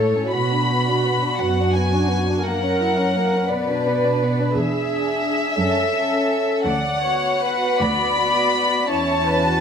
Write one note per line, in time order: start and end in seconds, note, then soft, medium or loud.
0.00 0.14 A2 soft
0.00 0.15 A3 soft
0.00 0.31 A4 soft
0.00 0.33 A4 soft
0.00 0.33 C#5 soft
0.16 0.34 C#4 soft
0.32 1.22 B2 soft
0.32 0.51 B3 soft
0.32 2.41 F#4 soft
0.32 2.46 F#4 soft
0.32 1.37 B5 soft
0.52 0.70 D4 soft
0.70 0.88 B3 soft
0.87 1.05 D4 soft
1.05 1.23 B3 soft
1.23 1.40 D4 soft
1.38 2.28 F#2 soft
1.38 1.58 B3 soft
1.38 1.74 F#5 soft
1.60 1.76 D4 soft
1.73 1.93 B3 soft
1.73 2.44 G#5 soft
1.92 2.10 D4 soft
2.09 2.27 B3 soft
2.27 2.45 D4 soft
2.44 3.31 F#2 soft
2.44 2.61 A#3 soft
2.44 3.49 A#4 soft
2.44 3.49 F#5 soft
2.63 2.80 C#4 soft
2.80 2.97 E4 soft
2.98 3.15 C#4 soft
3.15 3.32 A#3 soft
3.34 3.51 C#4 soft
3.48 4.37 B2 soft
3.48 3.67 B3 soft
3.48 4.56 B4 soft
3.48 4.54 B4 soft
3.48 4.55 D5 soft
3.69 3.86 D4 soft
3.87 4.04 B3 soft
4.04 4.21 D4 soft
4.23 4.39 B3 soft
4.40 4.56 D4 soft
4.55 5.46 E2 soft
4.55 5.60 G#4 soft
4.55 6.66 E5 medium
4.91 5.59 D4 soft
4.91 5.59 G#4 soft
5.59 6.51 F#2 soft
5.59 5.95 C#4 soft
5.59 6.64 A4 soft
5.59 5.96 A4 soft
5.97 6.66 C#4 soft
5.97 6.65 A4 soft
6.65 7.65 D2 soft
6.65 7.03 D5 soft
6.65 7.78 F#5 medium
7.02 8.16 B3 soft
7.02 8.16 F#4 soft
7.02 7.41 C#5 soft
7.42 7.81 B4 soft
7.79 8.76 D2 soft
7.79 8.90 D5 soft
7.79 8.91 B5 medium
8.20 8.91 B3 soft
8.20 8.91 F#4 soft
8.90 9.61 E2 soft
8.90 9.61 C#4 soft
8.90 9.43 E4 soft
8.90 9.27 C#5 soft
8.90 9.61 A5 medium
9.27 9.61 B4 soft
9.47 9.61 F#4 soft